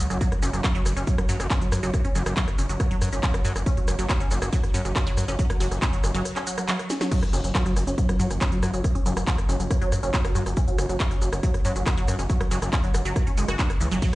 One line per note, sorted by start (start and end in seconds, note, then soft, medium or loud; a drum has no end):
0.10 0.18 F#1 medium
0.10 0.18 F#3 medium
0.10 open hi-hat medium
0.10 shaker soft
0.21 0.27 F#3 loud
0.21 kick loud
0.21 closed hi-hat medium
0.21 shaker soft
0.32 cross-stick medium
0.32 closed hi-hat medium
0.42 0.50 F#1 medium
0.42 0.46 C#4 medium
0.42 open hi-hat loud
0.42 shaker medium
0.53 0.61 F#1 medium
0.53 0.62 F#3 medium
0.53 closed hi-hat medium
0.53 shaker soft
0.64 0.67 F#3 medium
0.64 kick loud
0.64 cross-stick medium
0.64 clap loud
0.64 closed hi-hat medium
0.64 shaker soft
0.75 0.80 F#3 loud
0.75 closed hi-hat medium
0.86 0.93 F#1 loud
0.86 cross-stick medium
0.86 open hi-hat loud
0.86 shaker medium
0.96 1.04 F#1 medium
0.96 1.00 C#4 medium
0.96 closed hi-hat soft
0.96 shaker soft
1.07 1.16 F#3 medium
1.07 kick loud
1.07 closed hi-hat medium
1.07 shaker soft
1.18 1.22 F#3 medium
1.18 cross-stick loud
1.18 closed hi-hat medium
1.29 1.37 F#2 medium
1.29 1.35 F#3 loud
1.29 open hi-hat loud
1.29 shaker medium
1.40 1.47 F#1 medium
1.40 cross-stick medium
1.40 closed hi-hat soft
1.40 shaker soft
1.50 1.54 C#4 medium
1.50 kick loud
1.50 clap loud
1.50 closed hi-hat medium
1.50 shaker soft
1.61 1.70 F#3 medium
1.61 closed hi-hat medium
1.72 1.80 F#2 loud
1.72 1.75 F#3 medium
1.72 cross-stick loud
1.72 open hi-hat loud
1.72 shaker medium
1.83 1.91 F#1 medium
1.83 1.89 F#3 loud
1.83 closed hi-hat medium
1.83 shaker soft
1.94 kick loud
1.94 cross-stick medium
1.94 closed hi-hat medium
1.94 shaker soft
2.05 2.08 C#4 medium
2.05 closed hi-hat medium
2.15 2.23 F#1 loud
2.15 2.24 F#3 medium
2.15 open hi-hat loud
2.15 shaker medium
2.26 2.34 F#1 medium
2.26 2.30 F#3 medium
2.26 cross-stick medium
2.26 closed hi-hat medium
2.26 shaker soft
2.37 2.42 F#3 loud
2.37 kick loud
2.37 clap loud
2.37 closed hi-hat medium
2.37 shaker soft
2.48 cross-stick medium
2.48 closed hi-hat medium
2.58 2.66 F#1 loud
2.58 2.62 C#4 medium
2.58 open hi-hat loud
2.58 shaker medium
2.69 2.77 F#1 medium
2.69 2.78 F#3 medium
2.69 closed hi-hat medium
2.69 shaker soft
2.80 2.83 F#3 medium
2.80 kick loud
2.80 cross-stick medium
2.80 closed hi-hat medium
2.80 shaker soft
2.91 2.96 F#3 loud
2.91 closed hi-hat medium
3.02 3.09 F#2 medium
3.02 cross-stick medium
3.02 open hi-hat loud
3.02 shaker medium
3.12 3.20 F#1 medium
3.12 3.16 C#4 medium
3.12 closed hi-hat medium
3.12 shaker soft
3.23 3.32 F#3 medium
3.23 kick loud
3.23 clap loud
3.23 closed hi-hat medium
3.23 shaker soft
3.34 3.37 F#3 medium
3.34 cross-stick loud
3.34 closed hi-hat medium
3.45 3.53 F#2 loud
3.45 3.50 F#3 loud
3.45 open hi-hat loud
3.45 shaker medium
3.56 3.63 F#1 medium
3.56 cross-stick medium
3.56 open hi-hat medium
3.56 shaker soft
3.66 3.70 C#4 medium
3.66 kick loud
3.66 closed hi-hat medium
3.66 shaker soft
3.77 3.85 F#3 medium
3.77 closed hi-hat medium
3.88 3.96 F#1 loud
3.88 3.91 F#3 medium
3.88 cross-stick medium
3.88 open hi-hat loud
3.88 shaker medium
3.99 4.06 F#1 medium
3.99 4.04 F#3 loud
3.99 closed hi-hat medium
3.99 shaker soft
4.09 kick loud
4.09 cross-stick medium
4.09 clap loud
4.09 closed hi-hat medium
4.09 shaker soft
4.20 4.24 C#4 medium
4.20 closed hi-hat medium
4.31 4.39 F#1 loud
4.31 4.39 F#3 medium
4.31 open hi-hat loud
4.31 shaker medium
4.42 4.50 F#1 medium
4.42 4.45 F#3 medium
4.42 cross-stick medium
4.42 closed hi-hat medium
4.42 shaker soft
4.53 4.58 F#3 loud
4.53 kick loud
4.53 closed hi-hat medium
4.53 shaker soft
4.63 cross-stick medium
4.63 closed hi-hat medium
4.74 4.82 F#2 medium
4.74 4.78 C#4 medium
4.74 open hi-hat loud
4.74 shaker medium
4.85 4.93 F#1 medium
4.85 4.93 F#3 medium
4.85 closed hi-hat medium
4.85 shaker soft
4.96 4.99 F#3 medium
4.96 kick loud
4.96 cross-stick medium
4.96 clap loud
4.96 closed hi-hat medium
4.96 shaker soft
5.07 5.12 F#3 loud
5.07 closed hi-hat medium
5.17 5.25 F#2 loud
5.17 cross-stick medium
5.17 open hi-hat loud
5.17 shaker medium
5.28 5.36 F#1 medium
5.28 5.32 C#4 medium
5.28 closed hi-hat medium
5.28 shaker soft
5.39 5.47 F#3 medium
5.39 kick loud
5.39 closed hi-hat loud
5.39 shaker soft
5.50 5.53 F#3 medium
5.50 cross-stick medium
5.50 closed hi-hat medium
5.60 5.68 F#1 loud
5.60 5.66 F#3 loud
5.60 open hi-hat loud
5.60 shaker medium
5.71 5.79 F#1 medium
5.71 cross-stick medium
5.71 closed hi-hat medium
5.71 shaker soft
5.82 5.85 C#4 medium
5.82 kick loud
5.82 clap loud
5.82 closed hi-hat medium
5.82 shaker soft
5.93 6.01 F#3 medium
5.93 closed hi-hat medium
6.04 6.11 F#1 medium
6.04 6.07 F#3 medium
6.04 cross-stick medium
6.04 open hi-hat loud
6.04 shaker medium
6.14 6.22 F#1 medium
6.14 6.20 F#3 loud
6.14 closed hi-hat medium
6.14 shaker soft
6.25 cross-stick medium
6.25 closed hi-hat loud
6.25 shaker soft
6.36 6.39 C#4 medium
6.36 clap medium
6.36 closed hi-hat medium
6.47 6.55 F#3 medium
6.47 open hi-hat loud
6.47 shaker medium
6.58 6.61 F#3 medium
6.58 cross-stick medium
6.58 closed hi-hat medium
6.58 shaker soft
6.68 6.74 F#3 loud
6.68 clap loud
6.68 closed hi-hat medium
6.68 shaker soft
6.79 cross-stick medium
6.79 closed hi-hat medium
6.90 6.93 C#4 medium
6.90 snare medium
6.90 open hi-hat loud
6.90 shaker medium
7.01 7.09 F#3 medium
7.01 snare medium
7.01 open hi-hat medium
7.01 shaker soft
7.11 7.17 F#3 loud
7.11 kick loud
7.11 closed hi-hat loud
7.11 crash medium
7.11 shaker soft
7.23 cross-stick medium
7.23 closed hi-hat medium
7.33 7.41 F#1 loud
7.33 7.37 C#4 medium
7.33 open hi-hat loud
7.33 shaker medium
7.44 7.52 F#1 medium
7.44 7.52 F#3 medium
7.44 closed hi-hat medium
7.44 shaker soft
7.55 7.58 F#3 medium
7.55 kick loud
7.55 cross-stick medium
7.55 clap loud
7.55 closed hi-hat loud
7.55 shaker soft
7.66 7.71 F#3 loud
7.66 closed hi-hat medium
7.76 7.84 F#1 loud
7.76 cross-stick medium
7.76 open hi-hat loud
7.76 shaker medium
7.87 7.95 F#1 medium
7.87 7.91 C#4 medium
7.87 closed hi-hat medium
7.87 shaker soft
7.98 8.06 F#3 medium
7.98 kick loud
7.98 closed hi-hat medium
7.98 shaker soft
8.09 8.12 F#3 medium
8.09 cross-stick medium
8.09 closed hi-hat medium
8.19 8.27 F#2 medium
8.19 8.25 F#3 loud
8.19 open hi-hat loud
8.19 shaker medium
8.30 8.38 F#1 medium
8.30 cross-stick medium
8.30 closed hi-hat medium
8.30 shaker soft
8.41 8.44 C#4 medium
8.41 kick loud
8.41 clap loud
8.41 closed hi-hat loud
8.41 shaker soft
8.52 8.60 F#3 medium
8.52 closed hi-hat medium
8.63 8.70 F#2 loud
8.63 8.66 F#3 medium
8.63 cross-stick medium
8.63 open hi-hat loud
8.63 shaker medium
8.74 8.81 F#1 medium
8.74 8.79 F#3 loud
8.74 closed hi-hat medium
8.74 shaker soft
8.84 kick loud
8.84 cross-stick medium
8.84 closed hi-hat loud
8.84 shaker soft
8.95 8.98 C#4 medium
8.95 closed hi-hat medium
9.06 9.14 F#1 loud
9.06 9.14 F#3 medium
9.06 open hi-hat loud
9.06 shaker medium
9.17 9.24 F#1 medium
9.17 9.20 F#3 medium
9.17 cross-stick medium
9.17 closed hi-hat medium
9.17 shaker soft
9.27 9.33 F#3 loud
9.27 kick loud
9.27 clap loud
9.27 closed hi-hat loud
9.27 shaker soft
9.38 cross-stick medium
9.38 closed hi-hat medium
9.49 9.57 F#1 loud
9.49 9.52 C#4 medium
9.49 open hi-hat loud
9.49 shaker medium
9.60 9.68 F#1 medium
9.60 9.68 F#3 medium
9.60 closed hi-hat medium
9.60 shaker soft
9.71 9.74 F#3 medium
9.71 kick loud
9.71 cross-stick medium
9.71 closed hi-hat loud
9.71 shaker soft
9.82 9.87 F#3 loud
9.82 closed hi-hat medium
9.92 10.00 F#2 loud
9.92 cross-stick medium
9.92 open hi-hat loud
9.92 shaker medium
10.03 10.11 F#1 medium
10.03 10.06 C#4 medium
10.03 closed hi-hat medium
10.03 shaker soft
10.14 10.22 F#3 medium
10.14 kick loud
10.14 clap loud
10.14 closed hi-hat loud
10.14 shaker soft
10.25 10.28 F#3 medium
10.25 cross-stick loud
10.25 closed hi-hat medium
10.35 10.43 F#2 loud
10.35 10.41 F#3 loud
10.35 open hi-hat loud
10.35 shaker medium
10.46 10.54 F#1 medium
10.46 cross-stick medium
10.46 open hi-hat medium
10.46 shaker soft
10.57 10.60 C#4 medium
10.57 kick loud
10.57 closed hi-hat medium
10.57 shaker soft
10.68 10.76 F#3 medium
10.68 closed hi-hat medium
10.78 10.86 F#1 medium
10.78 10.82 F#3 medium
10.78 cross-stick loud
10.78 open hi-hat loud
10.78 shaker medium
10.89 10.97 F#1 medium
10.89 10.95 F#3 medium
10.89 closed hi-hat medium
10.89 shaker soft
11.00 kick loud
11.00 cross-stick medium
11.00 clap loud
11.00 closed hi-hat medium
11.00 shaker soft
11.11 11.14 C#4 medium
11.11 closed hi-hat medium
11.22 11.29 F#1 loud
11.22 11.30 F#3 medium
11.22 open hi-hat loud
11.22 shaker medium
11.33 11.40 F#1 medium
11.33 11.36 F#3 medium
11.33 cross-stick loud
11.33 closed hi-hat medium
11.33 shaker soft
11.43 11.49 F#3 loud
11.43 kick loud
11.43 closed hi-hat loud
11.43 shaker soft
11.54 cross-stick medium
11.54 closed hi-hat medium
11.65 11.73 F#2 medium
11.65 11.68 C#4 medium
11.65 open hi-hat loud
11.65 shaker medium
11.76 11.83 F#1 medium
11.76 11.84 F#3 medium
11.76 closed hi-hat medium
11.76 shaker soft
11.86 11.90 F#3 medium
11.86 kick loud
11.86 cross-stick loud
11.86 clap loud
11.86 closed hi-hat loud
11.86 shaker soft
11.97 12.03 F#3 loud
11.97 closed hi-hat medium
12.08 12.16 F#2 loud
12.08 cross-stick medium
12.08 open hi-hat loud
12.08 shaker medium
12.19 12.27 F#1 medium
12.19 12.22 C#4 medium
12.19 closed hi-hat medium
12.19 shaker soft
12.30 12.38 F#3 medium
12.30 kick loud
12.30 closed hi-hat medium
12.30 shaker soft
12.40 12.44 F#3 medium
12.40 cross-stick loud
12.40 closed hi-hat medium
12.51 12.59 F#1 medium
12.51 12.57 F#3 loud
12.51 open hi-hat loud
12.51 shaker medium
12.62 12.70 F#1 medium
12.62 cross-stick medium
12.62 closed hi-hat medium
12.62 shaker soft
12.73 12.76 C#4 medium
12.73 kick loud
12.73 clap loud
12.73 closed hi-hat medium
12.73 shaker soft
12.84 12.92 F#3 medium
12.84 closed hi-hat medium
12.94 13.02 F#1 medium
12.94 12.98 F#3 medium
12.94 cross-stick loud
12.94 open hi-hat loud
12.94 shaker medium
13.05 13.13 F#1 medium
13.05 13.11 F#3 loud
13.05 closed hi-hat medium
13.05 shaker soft
13.16 kick loud
13.16 cross-stick medium
13.16 closed hi-hat medium
13.16 shaker soft
13.27 13.30 C#4 medium
13.27 closed hi-hat medium
13.37 13.45 F#1 medium
13.37 13.46 G#3 medium
13.37 open hi-hat loud
13.37 shaker medium
13.48 13.56 F#1 medium
13.48 13.54 F#4 loud
13.48 cross-stick loud
13.48 closed hi-hat medium
13.48 shaker soft
13.59 13.65 D4 medium
13.59 kick loud
13.59 clap loud
13.59 closed hi-hat medium
13.59 shaker soft
13.70 cross-stick medium
13.70 closed hi-hat medium
13.81 13.88 C#2 medium
13.81 13.86 E3 medium
13.81 open hi-hat loud
13.81 shaker medium
13.92 13.99 F#1 medium
13.92 14.00 F#3 loud
13.92 open hi-hat medium
13.92 shaker soft
14.02 14.08 F#3 loud
14.02 kick loud
14.02 closed hi-hat medium
14.02 ride medium
14.02 shaker soft